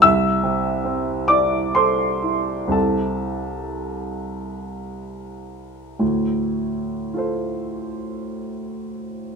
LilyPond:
\new Staff \with { instrumentName = "Grand piano" } { \time 3/4 \key d \minor \tempo 4 = 55 << { <e'' e'''>4. <d'' d'''>8 <c'' c'''>4 | <a' a''>2 r4 | r4 <f' a' c''>2 | } \\ { c,8 c8 c'8 e'8 a'8 e'8 | <c, c' e'>2. | <d, a,>2. | } >> }